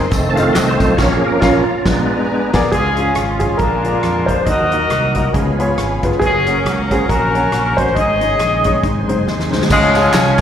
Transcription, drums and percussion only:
0.11 kick, closed hi-hat, tambourine
0.37 closed hi-hat, tambourine
0.55 snare, clap, closed hi-hat, tambourine
0.80 kick, closed hi-hat, tambourine
0.98 kick, snare, crash
1.42 kick, snare
1.85 kick, snare
2.53 kick, snare, crash
2.72 kick, closed hi-hat
2.96 closed hi-hat
3.15 cross-stick, closed hi-hat
3.40 kick, closed hi-hat
3.59 kick, closed hi-hat
3.84 closed hi-hat
4.03 cross-stick, closed hi-hat
4.29 kick, closed hi-hat
4.46 kick, closed hi-hat
4.71 closed hi-hat
4.90 cross-stick, closed hi-hat
5.15 kick, closed hi-hat
5.34 kick, closed hi-hat
5.60 closed hi-hat
5.78 cross-stick, closed hi-hat
6.03 kick, closed hi-hat
6.12 cross-stick
6.22 kick, closed hi-hat
6.46 closed hi-hat
6.66 cross-stick, closed hi-hat
6.91 kick, closed hi-hat
7.09 kick, closed hi-hat
7.35 closed hi-hat
7.52 cross-stick, closed hi-hat
7.78 kick, closed hi-hat
7.87 cross-stick
7.96 kick, closed hi-hat
8.21 closed hi-hat
8.39 cross-stick, closed hi-hat
8.64 kick, closed hi-hat
8.83 kick, closed hi-hat
9.09 closed hi-hat
9.27 snare
9.40 snare
9.53 snare
9.62 snare
9.70 kick, crash, tambourine
9.95 ride, tambourine
10.13 snare, clap, ride, tambourine
10.38 ride

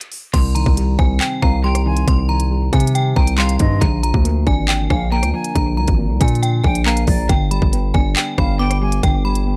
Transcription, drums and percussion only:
0.01 closed hi-hat
0.12 open hi-hat
0.34 kick, closed hi-hat, crash
0.56 closed hi-hat
0.66 kick
0.77 closed hi-hat
0.99 kick
1.21 clap, closed hi-hat
1.42 kick, cross-stick
1.75 cross-stick, closed hi-hat
1.97 closed hi-hat
2.08 kick, closed hi-hat
2.40 closed hi-hat
2.73 kick, closed hi-hat
2.80 closed hi-hat
2.87 closed hi-hat
2.95 closed hi-hat
3.16 kick
3.27 closed hi-hat
3.38 clap
3.49 closed hi-hat
3.59 kick, closed hi-hat
3.82 kick, closed hi-hat
4.03 closed hi-hat
4.14 kick
4.25 closed hi-hat
4.47 kick
4.68 clap, closed hi-hat
4.90 kick, cross-stick
5.23 cross-stick, closed hi-hat
5.44 closed hi-hat
5.55 kick, closed hi-hat
5.88 kick, closed hi-hat
6.21 kick, closed hi-hat
6.28 closed hi-hat
6.35 closed hi-hat
6.43 closed hi-hat
6.64 kick
6.75 closed hi-hat
6.86 clap
6.97 closed hi-hat
7.07 kick, open hi-hat
7.29 kick, closed hi-hat
7.51 closed hi-hat
7.62 kick
7.73 closed hi-hat
7.94 kick
8.16 clap, closed hi-hat
8.38 kick, cross-stick
8.71 cross-stick, closed hi-hat
8.92 closed hi-hat
9.03 kick, closed hi-hat
9.35 closed hi-hat

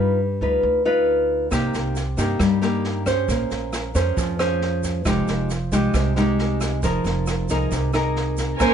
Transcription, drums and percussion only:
1.51 kick, cross-stick, snare, shaker
1.74 snare, shaker
1.96 snare, shaker
2.18 kick, snare, shaker
2.40 kick, cross-stick, snare, shaker
2.62 snare, shaker
2.84 snare
3.06 kick, cross-stick, snare, shaker
3.29 kick, snare, shaker
3.51 snare, shaker
3.73 cross-stick, snare, shaker
3.95 kick, snare, shaker
4.17 kick, snare, shaker
4.39 cross-stick, snare, shaker
4.62 snare
4.84 kick, snare, shaker
5.05 kick, cross-stick, snare, shaker
5.28 snare, shaker
5.50 snare, shaker
5.72 kick, snare, shaker
5.94 kick, cross-stick, snare, shaker
6.16 snare, shaker
6.39 snare
6.61 kick, cross-stick, snare, shaker
6.83 kick, snare, shaker
7.05 snare, shaker
7.27 cross-stick, snare, shaker
7.49 kick, snare, shaker
7.72 kick, snare, shaker
7.93 cross-stick, snare, shaker
8.16 snare
8.38 kick, snare, shaker
8.60 kick, cross-stick, snare, shaker

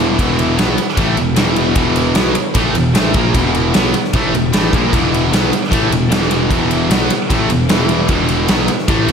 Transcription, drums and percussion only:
0.19 kick, ride
0.39 ride
0.59 snare, ride
0.78 ride
0.89 snare
0.97 kick, ride
1.17 ride
1.36 snare, ride
1.56 ride
1.76 kick, ride
1.96 ride
2.15 snare, ride
2.35 ride
2.55 kick, ride
2.75 ride
2.95 snare, ride
3.14 kick, ride
3.34 kick, ride
3.55 ride
3.74 snare, ride
3.94 ride
4.04 snare
4.13 kick, ride
4.35 ride
4.53 snare, ride
4.73 kick, ride
4.93 kick, ride
5.14 ride
5.33 snare, ride
5.53 ride
5.64 snare
5.72 kick, ride
5.92 ride
6.12 snare, ride
6.31 ride
6.51 kick, ride
6.71 ride
6.91 snare, ride
7.10 ride
7.30 kick, ride
7.50 ride
7.69 snare, ride
7.89 ride
8.09 kick, ride
8.29 ride
8.48 snare, ride
8.68 ride
8.79 snare
8.88 kick, ride
9.08 ride

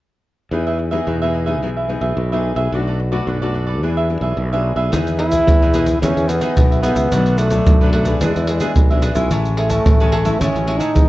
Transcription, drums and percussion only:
4.93 pandeiro, shaker, surdo
5.07 pandeiro, shaker
5.19 pandeiro
5.32 pandeiro, shaker, surdo
5.48 pandeiro, shaker, surdo
5.62 pandeiro, shaker
5.74 pandeiro, shaker
5.86 pandeiro, shaker, surdo
6.03 pandeiro, shaker, surdo
6.17 pandeiro, shaker
6.29 pandeiro, shaker
6.41 pandeiro, shaker
6.57 pandeiro, shaker, surdo
6.72 pandeiro, shaker, surdo
6.83 pandeiro, shaker
6.96 pandeiro, shaker, surdo
7.12 pandeiro, shaker, surdo
7.26 pandeiro, shaker
7.38 pandeiro, shaker
7.50 pandeiro, shaker, surdo
7.66 pandeiro, shaker, surdo
7.81 pandeiro, shaker
7.93 pandeiro
8.05 pandeiro, shaker, surdo
8.21 pandeiro, shaker, surdo
8.36 pandeiro, shaker
8.47 pandeiro, shaker
8.60 pandeiro, shaker
8.76 pandeiro, shaker, surdo
8.91 pandeiro, shaker, surdo
9.02 pandeiro, shaker, surdo
9.15 pandeiro, shaker, surdo
9.31 pandeiro, shaker, surdo
9.45 pandeiro, shaker
9.57 pandeiro
9.70 pandeiro, shaker, surdo
9.86 pandeiro, shaker, surdo
10.00 pandeiro, shaker
10.12 pandeiro
10.25 pandeiro, shaker, surdo
10.41 pandeiro, shaker, surdo
10.56 pandeiro, shaker
10.68 pandeiro
10.80 pandeiro, shaker
10.96 pandeiro, shaker, surdo

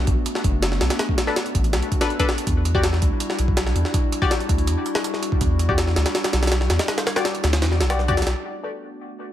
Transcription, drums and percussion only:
0.07 kick, closed hi-hat
0.26 closed hi-hat
0.35 snare
0.44 kick, closed hi-hat
0.62 snare, closed hi-hat
0.72 snare
0.81 snare, closed hi-hat
0.90 snare, closed hi-hat
0.99 snare, closed hi-hat
1.09 kick
1.18 snare, closed hi-hat
1.27 snare
1.36 snare, closed hi-hat
1.46 closed hi-hat
1.55 kick, closed hi-hat
1.64 closed hi-hat
1.73 snare, closed hi-hat
1.82 closed hi-hat
1.92 kick, closed hi-hat
2.01 snare, closed hi-hat
2.10 closed hi-hat
2.19 kick, closed hi-hat
2.29 snare
2.38 closed hi-hat
2.47 kick, closed hi-hat
2.65 closed hi-hat
2.75 kick
2.83 snare, closed hi-hat
2.93 snare
3.02 kick, closed hi-hat
3.20 closed hi-hat
3.30 snare
3.39 closed hi-hat
3.48 kick
3.57 snare, closed hi-hat
3.67 snare
3.76 closed hi-hat
3.85 snare
3.94 kick, closed hi-hat
4.12 closed hi-hat
4.22 kick
4.31 snare, closed hi-hat
4.40 closed hi-hat
4.49 kick, closed hi-hat
4.58 closed hi-hat
4.67 closed hi-hat
4.86 closed hi-hat
4.95 snare
5.04 closed hi-hat
5.14 snare
5.23 closed hi-hat
5.32 kick
5.41 kick, closed hi-hat
5.59 closed hi-hat
5.69 kick
5.78 snare, closed hi-hat
5.87 snare
5.96 snare, closed hi-hat
6.06 snare, closed hi-hat
6.15 snare, closed hi-hat
6.24 snare, closed hi-hat
6.33 snare, closed hi-hat
6.43 snare, closed hi-hat
6.47 snare, closed hi-hat
6.52 snare, closed hi-hat
6.61 snare
6.70 snare, closed hi-hat
6.79 snare, closed hi-hat
6.88 snare, closed hi-hat
6.98 snare, closed hi-hat
7.07 snare, closed hi-hat
7.16 snare, closed hi-hat
7.25 snare, closed hi-hat
7.35 closed hi-hat
7.44 snare, closed hi-hat
7.53 snare, closed hi-hat
7.62 snare, closed hi-hat
7.72 snare
7.80 snare, closed hi-hat
7.90 snare, closed hi-hat
7.99 snare
8.08 kick, closed hi-hat
8.17 snare, closed hi-hat
8.22 snare, closed hi-hat
8.27 snare, closed hi-hat

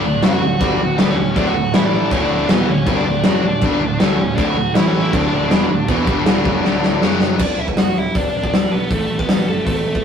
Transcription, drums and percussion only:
0.23 snare, crash
0.61 kick, crash
0.99 snare, crash
1.36 kick, crash
1.74 snare, crash
2.11 kick, crash
2.49 snare, crash
2.87 kick, crash
3.24 snare, crash
3.61 kick, crash
4.00 snare, crash
4.38 kick, crash
4.75 snare, crash
5.13 kick, crash
5.51 snare, crash
5.88 kick, crash
6.07 kick
6.26 snare, crash
6.45 kick
6.65 snare
6.83 snare
7.02 snare
7.21 snare
7.39 kick, crash
7.68 kick
7.77 snare, open hi-hat
8.15 kick, open hi-hat
8.44 kick
8.54 snare, open hi-hat
8.90 kick, open hi-hat
9.19 kick
9.29 snare, open hi-hat
9.67 kick, open hi-hat
9.95 kick

